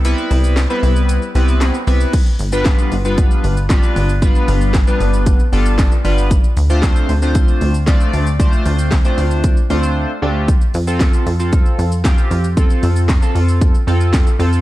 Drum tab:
CC |----------------|x---------------|----------------|----------------|
HH |x-o-x-o-x-o-x-o-|x-o-x-o-x-o-x-o-|x-o-x-o-x-o-x-o-|x-o-x-o-x-o-x-o-|
SH |xxxxxxxxxxxxxxxx|xxxxxxxxxxxxxxxx|xxxxxxxxxxxxxxxx|xxxxxxxxxxxxxxxx|
CP |----x-------x---|----x-------x---|----x-------x---|----x-------x---|
SD |----o-------o---|----o-------o---|----o-------o---|----o-------o---|
BD |----------------|o---o---o---o---|o---o---o---o---|o---o---o---o---|

CC |----------------|----------------|----------------|
HH |x-o-x-o-x-o-----|x-o-x-o-x-o-x-o-|x-o-x-o-x-o-x-o-|
SH |xxxxxxxxxxxx----|xxxxxxxxxxxxxxxx|xxxxxxxxxxxxxxxx|
CP |----x-----------|----x-------x---|----x-------x---|
SD |----o-----------|----o-------o---|----o-------o---|
BD |o---o---o-------|o---o---o---o---|o---o---o---o---|